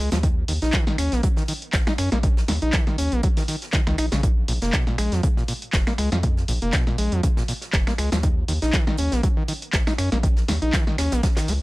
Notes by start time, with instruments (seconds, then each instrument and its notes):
0.11 analog synth bass D#2, acid bass F3, snare, closed hi-hat
0.23 acid bass D#3, kick, closed hi-hat
0.48 analog synth bass D#2, acid bass D#3, closed hi-hat, open hi-hat
0.62 analog synth bass A#1, acid bass D#4, snare, closed hi-hat
0.73 acid bass D#3, kick, snare, clap, closed hi-hat
0.87 acid bass D#3, snare
0.98 analog synth bass D#2, acid bass C#4, finger snap, closed hi-hat, open hi-hat
1.12 analog synth bass A#1, acid bass A#3, snare, closed hi-hat
1.23 acid bass F#3, kick, closed hi-hat
1.36 acid bass D#3, snare
1.48 acid bass D#3, closed hi-hat, open hi-hat
1.62 closed hi-hat
1.73 analog synth bass A#1, kick, snare, clap, closed hi-hat
1.87 acid bass D#4, finger snap, snare
1.98 analog synth bass F#2, acid bass C#4, finger snap, closed hi-hat, open hi-hat
2.12 analog synth bass A#1, acid bass A#3, snare, closed hi-hat
2.23 acid bass D#3, kick, closed hi-hat
2.37 snare
2.48 analog synth bass D#2, acid bass D#3, snare, closed hi-hat, open hi-hat
2.62 analog synth bass A#1, acid bass D#4, closed hi-hat
2.73 acid bass D#3, kick, snare, clap, closed hi-hat
2.87 acid bass D#3, snare
2.98 analog synth bass D#2, acid bass C#4, closed hi-hat, open hi-hat
3.12 analog synth bass A#1, acid bass A#3, closed hi-hat
3.23 acid bass F#3, kick, closed hi-hat
3.37 acid bass D#3, snare, open hi-hat
3.48 acid bass D#3, snare, closed hi-hat, open hi-hat
3.62 snare, closed hi-hat
3.73 acid bass D#3, kick, snare, clap, closed hi-hat
3.87 analog synth bass C#2, acid bass D#3, finger snap, snare
3.98 analog synth bass A#1, acid bass D#4, finger snap, closed hi-hat, open hi-hat
4.12 analog synth bass A#1, acid bass C#3, snare, closed hi-hat
4.23 acid bass A#2, kick, closed hi-hat
4.48 analog synth bass A#1, acid bass A#2, closed hi-hat, open hi-hat
4.62 analog synth bass F1, acid bass A#3, snare, closed hi-hat
4.73 acid bass A#2, kick, snare, clap, closed hi-hat
4.87 acid bass A#2, snare
4.98 analog synth bass A#1, acid bass G#3, finger snap, closed hi-hat, open hi-hat
5.12 analog synth bass F2, acid bass F3, snare, closed hi-hat
5.23 acid bass C#3, kick, closed hi-hat
5.37 acid bass A#2, snare
5.48 acid bass A#2, closed hi-hat, open hi-hat
5.62 closed hi-hat
5.73 analog synth bass F1, kick, snare, clap, closed hi-hat
5.87 acid bass A#3, finger snap, snare
5.98 analog synth bass C#2, acid bass G#3, finger snap, closed hi-hat, open hi-hat
6.12 analog synth bass F2, acid bass F3, snare, closed hi-hat
6.23 acid bass A#2, kick, closed hi-hat
6.37 snare
6.48 analog synth bass A#1, acid bass A#2, closed hi-hat, open hi-hat
6.62 analog synth bass F1, acid bass A#3, closed hi-hat
6.73 acid bass A#2, kick, snare, clap, closed hi-hat
6.87 acid bass A#2, snare
6.98 analog synth bass A#1, acid bass G#3, closed hi-hat, open hi-hat
7.12 analog synth bass F2, acid bass F3, closed hi-hat
7.23 acid bass C#3, kick, closed hi-hat
7.37 acid bass A#2, snare
7.48 acid bass A#2, snare, closed hi-hat, open hi-hat
7.61 snare, closed hi-hat
7.73 analog synth bass F1, kick, snare, clap, closed hi-hat
7.87 acid bass A#3, finger snap, snare
7.98 analog synth bass C#2, acid bass G#3, finger snap, closed hi-hat, open hi-hat
8.12 analog synth bass D#2, acid bass F3, snare, closed hi-hat
8.23 acid bass D#3, kick, closed hi-hat
8.48 analog synth bass D#2, acid bass D#3, closed hi-hat, open hi-hat
8.62 analog synth bass A#1, acid bass D#4, snare, closed hi-hat
8.73 acid bass D#3, kick, snare, clap, closed hi-hat
8.87 acid bass D#3, snare
8.97 analog synth bass D#2, acid bass C#4, closed hi-hat, open hi-hat
9.12 analog synth bass A#1, acid bass A#3, snare, closed hi-hat
9.23 acid bass F#3, kick, closed hi-hat
9.37 acid bass D#3
9.48 acid bass D#3, closed hi-hat, open hi-hat
9.62 closed hi-hat
9.73 analog synth bass A#1, kick, snare, clap, closed hi-hat
9.87 acid bass D#4, finger snap, snare
9.98 analog synth bass F#2, acid bass C#4, finger snap, closed hi-hat, open hi-hat
10.12 analog synth bass A#1, acid bass A#3, snare, closed hi-hat
10.23 acid bass D#3, kick, closed hi-hat
10.36 snare
10.48 analog synth bass D#2, acid bass D#3, snare, closed hi-hat, open hi-hat
10.62 analog synth bass A#1, acid bass D#4, closed hi-hat
10.73 acid bass D#3, kick, snare, clap, closed hi-hat
10.87 acid bass D#3, snare
10.98 analog synth bass D#2, acid bass C#4, finger snap, snare, closed hi-hat, open hi-hat
11.12 analog synth bass A#1, acid bass A#3, snare, closed hi-hat
11.23 acid bass F#3, kick, snare, closed hi-hat
11.37 acid bass D#3, snare, clap, closed hi-hat, open hi-hat
11.48 analog synth bass C#2, acid bass A#3, snare, closed hi-hat, open hi-hat